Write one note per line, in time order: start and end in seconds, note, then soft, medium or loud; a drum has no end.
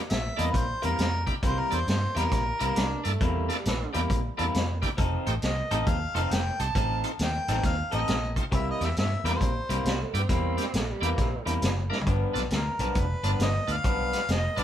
0.10 0.29 A#1 medium
0.10 0.41 E5 medium
0.10 snare loud
0.10 closed hi-hat medium
0.37 0.49 E2 medium
0.37 0.63 C3 medium
0.37 0.63 G3 medium
0.37 0.46 A#3 medium
0.37 0.63 A#3 medium
0.37 0.45 D4 medium
0.37 0.45 E4 medium
0.37 0.63 E4 medium
0.37 0.46 A4 medium
0.37 0.51 D#5 medium
0.37 closed hi-hat medium
0.52 0.72 A#1 medium
0.52 0.58 B4 medium
0.52 kick loud
0.52 closed hi-hat medium
0.57 0.84 C5 medium
0.82 0.94 E2 medium
0.82 1.08 C3 medium
0.82 1.07 G3 medium
0.82 0.90 A#3 medium
0.82 1.07 A#3 medium
0.82 0.91 D4 medium
0.82 0.90 E4 medium
0.82 1.07 E4 medium
0.82 0.91 A#4 medium
0.82 1.25 A#4 medium
0.82 closed hi-hat medium
0.99 1.27 F2 medium
0.99 snare loud
0.99 closed hi-hat medium
1.26 1.35 A#3 medium
1.26 1.35 D4 medium
1.26 1.35 E4 medium
1.26 1.35 G4 medium
1.26 kick medium
1.26 closed hi-hat soft
1.43 1.61 C2 medium
1.43 1.77 C3 medium
1.43 1.77 G3 medium
1.43 1.77 A#3 medium
1.43 1.77 E4 medium
1.43 1.61 C5 loud
1.43 kick loud
1.43 closed hi-hat medium
1.60 1.76 A#4 medium
1.71 1.82 E2 medium
1.71 1.79 A#3 medium
1.71 1.79 D4 medium
1.71 1.79 E4 medium
1.71 1.79 A4 medium
1.71 1.89 C5 medium
1.71 closed hi-hat medium
1.87 2.06 G2 medium
1.87 2.20 C5 medium
1.87 snare loud
1.87 closed hi-hat medium
2.14 2.26 E2 medium
2.14 2.41 C3 medium
2.14 2.41 G3 medium
2.14 2.23 A#3 medium
2.14 2.41 A#3 medium
2.14 2.23 D4 medium
2.14 2.24 E4 medium
2.14 2.41 E4 medium
2.14 2.24 G4 medium
2.14 3.06 A#4 medium
2.14 snare soft
2.14 closed hi-hat medium
2.32 2.50 A#1 medium
2.32 kick loud
2.32 snare soft
2.32 closed hi-hat medium
2.59 2.71 C2 medium
2.59 2.86 C3 medium
2.59 2.86 G3 medium
2.59 2.68 A#3 medium
2.59 2.85 A#3 medium
2.59 2.68 D4 medium
2.59 2.68 E4 medium
2.59 2.85 E4 medium
2.59 2.68 A#4 medium
2.59 closed hi-hat medium
2.76 2.95 C2 medium
2.76 3.08 D4 medium
2.76 snare loud
2.76 closed hi-hat medium
3.03 3.15 G2 medium
3.03 3.52 A3 medium
3.03 3.12 A#3 medium
3.03 3.12 D4 medium
3.03 3.12 E4 medium
3.03 3.12 A4 medium
3.03 closed hi-hat medium
3.21 3.49 E2 medium
3.21 3.54 C3 medium
3.21 3.55 G3 medium
3.21 3.55 A#3 medium
3.21 3.55 E4 medium
3.21 kick loud
3.21 closed hi-hat medium
3.49 3.66 G3 medium
3.49 3.57 A#3 medium
3.49 3.57 D4 medium
3.49 3.57 E4 medium
3.49 3.57 A4 medium
3.49 snare soft
3.49 closed hi-hat medium
3.65 3.84 A#1 medium
3.65 3.94 E3 medium
3.65 snare loud
3.65 closed hi-hat medium
3.93 4.05 E2 medium
3.93 4.19 C3 medium
3.93 4.19 G3 medium
3.93 4.01 A#3 medium
3.93 4.19 A#3 medium
3.93 4.01 D4 medium
3.93 4.02 E4 medium
3.93 4.19 E4 medium
3.93 4.02 G4 medium
3.93 closed hi-hat medium
4.10 4.28 A#1 medium
4.10 kick loud
4.10 closed hi-hat medium
4.37 4.49 E2 medium
4.37 4.63 C3 medium
4.37 4.63 G3 medium
4.37 4.46 A#3 medium
4.37 4.63 A#3 medium
4.37 4.46 D4 medium
4.37 4.46 E4 medium
4.37 4.63 E4 medium
4.37 4.46 A4 medium
4.37 closed hi-hat soft
4.54 4.83 F2 medium
4.54 snare loud
4.54 closed hi-hat medium
4.82 4.90 A#3 medium
4.82 4.90 D4 medium
4.82 4.90 E4 medium
4.82 4.90 G4 medium
4.82 kick medium
4.82 closed hi-hat medium
4.97 5.17 F1 medium
4.97 5.31 F3 medium
4.97 5.31 C4 medium
4.97 5.32 D#4 medium
4.97 5.32 A4 medium
4.97 kick loud
4.97 closed hi-hat medium
5.26 5.37 A1 medium
5.26 5.35 A3 medium
5.26 5.35 C4 medium
5.26 5.35 D#4 medium
5.26 5.35 G4 medium
5.26 closed hi-hat soft
5.42 5.61 C2 medium
5.42 5.84 D#5 medium
5.42 snare medium
5.42 closed hi-hat medium
5.71 5.81 A1 medium
5.71 5.96 F3 medium
5.71 5.79 A3 medium
5.71 5.79 C4 medium
5.71 5.96 C4 medium
5.71 5.79 D#4 medium
5.71 5.96 D#4 medium
5.71 5.79 G4 medium
5.71 5.96 A4 medium
5.71 closed hi-hat medium
5.86 6.05 D#2 medium
5.86 6.34 F5 medium
5.86 kick loud
5.86 closed hi-hat medium
6.14 6.25 F1 medium
6.14 6.41 F3 medium
6.14 6.23 A3 medium
6.14 6.23 C4 medium
6.14 6.41 C4 medium
6.14 6.23 D#4 medium
6.14 6.41 D#4 medium
6.14 6.23 F4 medium
6.14 6.40 A4 medium
6.14 closed hi-hat medium
6.31 6.49 F1 medium
6.31 6.64 G5 medium
6.31 snare loud
6.31 closed hi-hat medium
6.59 6.70 C2 medium
6.59 6.68 A3 medium
6.59 6.68 C4 medium
6.59 6.68 D#4 medium
6.59 6.68 G4 medium
6.59 7.05 A5 medium
6.59 closed hi-hat medium
6.75 7.03 A1 medium
6.75 7.09 F3 medium
6.75 7.09 C4 medium
6.75 7.09 D#4 medium
6.75 7.09 A4 loud
6.75 kick loud
6.75 closed hi-hat medium
7.04 7.12 A3 medium
7.04 7.12 C4 medium
7.04 7.12 D#4 soft
7.04 7.12 F4 medium
7.04 closed hi-hat medium
7.19 7.38 D#2 medium
7.19 7.62 G5 medium
7.19 snare medium
7.19 closed hi-hat medium
7.48 7.58 A1 medium
7.48 7.73 F3 medium
7.48 7.56 A3 medium
7.48 7.56 C4 medium
7.48 7.73 C4 medium
7.48 7.56 D#4 medium
7.48 7.73 D#4 medium
7.48 7.73 A4 medium
7.48 7.56 A4 medium
7.48 snare soft
7.48 closed hi-hat medium
7.63 7.82 D#2 medium
7.63 7.91 F5 medium
7.63 kick loud
7.63 snare soft
7.63 closed hi-hat medium
7.91 8.03 A1 medium
7.91 8.17 F3 medium
7.91 8.00 A3 medium
7.91 8.17 C4 medium
7.91 8.00 C4 medium
7.91 8.17 D#4 medium
7.91 8.00 D#4 medium
7.91 8.01 G4 medium
7.91 8.16 A4 medium
7.91 8.34 D#5 medium
7.91 closed hi-hat soft
8.08 8.36 A#1 medium
8.08 snare loud
8.08 closed hi-hat medium
8.36 8.44 A3 medium
8.36 8.44 C4 medium
8.36 8.45 D#4 medium
8.36 8.45 F4 medium
8.36 kick medium
8.36 closed hi-hat medium
8.52 8.70 C2 medium
8.52 8.85 C3 medium
8.52 8.85 G3 medium
8.52 8.86 A#3 medium
8.52 8.86 E4 medium
8.52 8.67 E5 medium
8.52 kick loud
8.52 closed hi-hat medium
8.71 8.86 D#5 medium
8.81 8.91 E2 medium
8.81 8.89 A#3 medium
8.81 8.89 D4 medium
8.81 8.89 E4 medium
8.81 8.89 G4 medium
8.81 8.98 E5 medium
8.81 snare soft
8.81 closed hi-hat soft
8.97 9.15 G2 medium
8.97 9.24 E5 medium
8.97 snare medium
8.97 closed hi-hat medium
9.24 9.34 E2 medium
9.24 9.50 C3 medium
9.24 9.50 G3 medium
9.24 9.33 A#3 medium
9.24 9.49 A#3 medium
9.24 9.33 D4 medium
9.24 9.49 E4 medium
9.24 9.33 E4 medium
9.24 9.33 G4 medium
9.24 snare soft
9.24 closed hi-hat medium
9.28 10.11 C5 medium
9.41 9.59 A#1 medium
9.41 kick loud
9.41 closed hi-hat medium
9.69 9.79 C2 medium
9.69 9.94 C3 medium
9.69 9.94 G3 medium
9.69 9.77 A#3 medium
9.69 9.94 A#3 medium
9.69 9.77 D4 medium
9.69 9.77 E4 medium
9.69 9.94 E4 medium
9.69 9.77 G4 medium
9.69 closed hi-hat medium
9.85 10.03 C2 medium
9.85 10.04 G3 medium
9.85 snare loud
9.85 closed hi-hat medium
10.03 10.16 A3 medium
10.14 10.24 G2 medium
10.14 10.22 A#3 medium
10.14 10.78 C4 medium
10.14 10.22 D4 medium
10.14 10.22 E4 medium
10.14 10.22 G4 medium
10.14 closed hi-hat medium
10.29 10.57 E2 medium
10.29 10.63 C3 medium
10.29 10.63 G3 medium
10.29 10.63 A#3 medium
10.29 10.63 E4 loud
10.29 kick loud
10.29 closed hi-hat medium
10.57 10.65 A#3 medium
10.57 10.65 D4 medium
10.57 10.66 E4 medium
10.57 10.66 G4 medium
10.57 snare soft
10.57 closed hi-hat medium
10.74 10.92 A#1 medium
10.74 10.93 A3 medium
10.74 snare loud
10.74 closed hi-hat medium
10.91 11.07 G3 medium
11.01 11.12 E2 medium
11.01 11.27 C3 medium
11.01 11.27 G3 medium
11.01 11.10 A#3 medium
11.01 11.27 A#3 medium
11.01 11.09 D4 medium
11.01 11.10 E4 medium
11.01 11.27 E4 medium
11.01 11.10 G4 medium
11.01 closed hi-hat medium
11.06 11.19 E3 medium
11.18 11.36 A#1 medium
11.18 11.47 C3 medium
11.18 kick loud
11.18 snare soft
11.18 closed hi-hat medium
11.45 11.56 E2 medium
11.45 11.71 C3 medium
11.45 11.71 G3 medium
11.45 11.54 A#3 medium
11.45 11.71 A#3 medium
11.45 11.54 D4 medium
11.45 11.54 E4 medium
11.45 11.71 E4 medium
11.45 11.54 G4 medium
11.45 closed hi-hat medium
11.62 11.90 F#1 medium
11.62 snare loud
11.62 closed hi-hat medium
11.90 11.98 A#3 medium
11.90 11.98 D4 medium
11.90 11.98 E4 medium
11.90 11.98 A#4 medium
11.90 snare medium
12.01 floor tom medium
12.06 12.25 G1 medium
12.06 12.40 G2 medium
12.06 12.40 F3 medium
12.06 12.40 B3 medium
12.06 12.41 D4 medium
12.06 kick loud
12.06 closed hi-hat medium
12.33 12.45 B1 medium
12.33 12.42 B3 medium
12.33 12.43 D4 medium
12.33 12.43 F4 medium
12.33 12.43 A4 medium
12.33 snare soft
12.33 closed hi-hat medium
12.50 12.69 D2 medium
12.50 snare loud
12.50 closed hi-hat medium
12.55 13.01 A#4 medium
12.79 12.89 B1 medium
12.79 13.05 G2 medium
12.79 13.05 F3 medium
12.79 12.88 B3 medium
12.79 13.04 B3 medium
12.79 12.87 D4 medium
12.79 13.04 D4 medium
12.79 12.88 F4 medium
12.79 12.88 A4 medium
12.79 closed hi-hat medium
12.95 13.14 F1 medium
12.95 kick loud
12.95 closed hi-hat medium
12.99 13.42 B4 loud
13.23 13.33 G1 medium
13.23 13.49 G2 medium
13.23 13.49 F3 medium
13.23 13.32 B3 medium
13.23 13.49 B3 medium
13.23 13.32 D4 medium
13.23 13.48 D4 medium
13.23 13.32 F4 medium
13.23 13.32 A4 medium
13.23 closed hi-hat medium
13.39 13.58 G1 medium
13.39 13.73 D#5 loud
13.39 snare loud
13.39 closed hi-hat medium
13.67 13.78 D2 medium
13.67 13.76 B3 medium
13.67 13.76 D4 medium
13.67 13.76 F4 medium
13.67 13.76 A4 medium
13.67 closed hi-hat medium
13.72 14.33 F5 loud
13.84 14.12 B1 medium
13.84 14.18 G2 medium
13.84 14.18 F3 medium
13.84 14.18 B3 medium
13.84 14.18 D4 medium
13.84 kick loud
13.84 closed hi-hat medium
14.13 14.21 B3 medium
14.13 14.21 D4 medium
14.13 14.21 F4 medium
14.13 14.21 B4 medium
14.13 snare soft
14.13 closed hi-hat medium
14.29 14.47 F1 medium
14.29 14.61 D#5 medium
14.29 snare loud
14.29 closed hi-hat medium
14.56 14.63 B1 medium
14.56 14.63 G2 medium
14.56 14.63 F3 medium
14.56 14.63 B3 medium
14.56 14.63 D4 medium
14.56 14.63 F4 medium
14.56 14.63 A4 medium
14.56 14.63 D5 medium
14.56 closed hi-hat medium